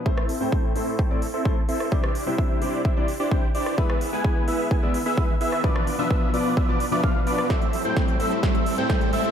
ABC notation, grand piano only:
X:1
M:4/4
L:1/16
Q:1/4=129
K:Am
V:1 name="Grand piano"
[A,,A,CEc] z2 [A,,A,CEc]3 [A,,A,CEc]3 [A,,A,CEd] z2 [A,,A,CEc] z3 | [C,G,DEc] z2 [C,G,DEc]3 [C,G,DEc]3 [C,G,DEd] z2 [C,G,DEc] z3 | [^G,B,EB] z2 [G,B,EB]3 [G,B,EB]3 [G,B,Ed] z2 [G,B,EB] z3 | [B,,F,B,DB] z2 [B,,F,B,DB]3 [B,,F,B,DB]3 [B,,F,B,Dd] z [B,,F,B,De]2 [B,,F,B,DB]3 |
[A,,A,CEc] z2 [A,,A,CEc]3 [A,,A,CEc]2 [A,,A,CEc] z2 [A,,A,CEc]3 [A,,A,CEc]2 |]